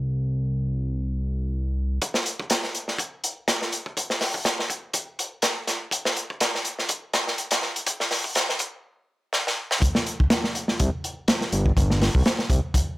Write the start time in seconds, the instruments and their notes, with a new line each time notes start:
Already playing: analog synth bass C2
2.02 kick, closed hi-hat
2.14 snare
2.26 closed hi-hat
2.40 kick
2.50 snare, closed hi-hat
2.63 snare
2.75 closed hi-hat
2.88 snare
2.98 kick, closed hi-hat
3.24 closed hi-hat
3.48 snare, closed hi-hat
3.62 snare
3.72 closed hi-hat
3.86 kick
3.97 kick, closed hi-hat
4.10 snare
4.21 snare, open hi-hat
4.34 kick
4.45 snare, closed hi-hat
4.59 snare
4.70 kick, closed hi-hat
4.94 kick, closed hi-hat
5.19 closed hi-hat
5.42 snare, closed hi-hat
5.67 snare, closed hi-hat
5.91 kick, closed hi-hat
6.05 snare
6.16 closed hi-hat
6.30 kick
6.40 snare, closed hi-hat
6.55 snare
6.65 closed hi-hat
6.79 snare
6.89 kick, closed hi-hat
7.13 snare, closed hi-hat
7.27 snare
7.38 closed hi-hat
7.51 snare, closed hi-hat
7.62 snare
7.76 closed hi-hat
7.86 kick, closed hi-hat
8.00 snare
8.11 snare, open hi-hat
8.24 kick
8.35 snare, closed hi-hat
8.49 snare
8.59 kick, closed hi-hat
9.33 snare
9.47 snare
9.71 snare
9.82 kick, closed hi-hat
9.95 snare
10.06 closed hi-hat
10.20 kick
10.30 snare, closed hi-hat
10.44 snare
10.55 closed hi-hat
10.68 snare
10.80 analog synth bass C2, kick, closed hi-hat
11.04 closed hi-hat
11.28 snare, closed hi-hat
11.41 snare
11.52 analog synth bass G1, closed hi-hat
11.66 kick
11.77 analog synth bass G1, kick, closed hi-hat
11.90 snare
12.01 snare, open hi-hat
12.15 analog synth bass C2, kick
12.26 snare, closed hi-hat
12.39 snare
12.50 analog synth bass C2, kick, closed hi-hat
12.74 kick, closed hi-hat